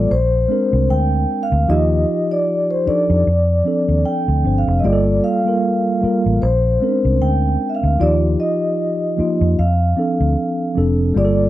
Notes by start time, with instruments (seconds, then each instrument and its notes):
Already playing: tine electric piano G3 A#3 F4 A4 C5, vibraphone D5
0.11 fingered electric bass A#1, vibraphone C5
0.48 tine electric piano G#3 C4 D4 A#4
0.73 fingered electric bass C2
0.90 fingered electric bass D2, vibraphone G5
1.43 vibraphone F5
1.52 fingered electric bass D2
1.68 fingered electric bass D#2, tine electric piano F3 D#4 F4 G4, vibraphone D#5
2.31 vibraphone D5
2.71 vibraphone C5
2.85 tine electric piano F3 D4 D#4 A4, vibraphone D5, muted fingered electric bass stroke
3.10 fingered electric bass F2
3.27 fingered electric bass F2
3.64 tine electric piano F3 C4 D4 A4
3.89 fingered electric bass D#2
4.05 vibraphone G5
4.28 fingered electric bass D2
4.43 fingered electric bass G1, tine electric piano F3 C4 D4 C5
4.58 vibraphone F5
4.68 fingered electric bass F1
4.79 tine electric piano G3, vibraphone D#5
4.84 fingered electric bass G1, tine electric piano A#3 F4 G#4, vibraphone D5
4.93 tine electric piano A4
5.24 vibraphone F5
5.45 tine electric piano G3 A#3 F4 A#4
6.01 tine electric piano G3 A#3 F4 A#4, muted fingered electric bass stroke
6.26 fingered electric bass A1
6.42 fingered electric bass A#1, vibraphone C5
6.80 tine electric piano G#3 C4 C#4 A#4
6.89 tine electric piano D4
7.05 fingered electric bass C2
7.21 fingered electric bass D2, vibraphone G5
7.69 vibraphone E5
7.75 vibraphone F5
7.83 fingered electric bass D2
7.99 fingered electric bass D#2, tine electric piano F3 D#4 F4 G4, vibraphone D5
8.40 vibraphone D#5
9.17 tine electric piano F3 A#3 D#4 F4, muted fingered electric bass stroke
9.41 fingered electric bass F2
9.59 fingered electric bass F2, vibraphone F5
9.96 tine electric piano F3 C4 D4 A4
10.20 fingered electric bass D2
10.75 fingered electric bass F1, tine electric piano F3 C4 D4 A4
11.14 fingered electric bass G1, tine electric piano G3 A#3 F4 G#4, vibraphone D5
11.25 tine electric piano A4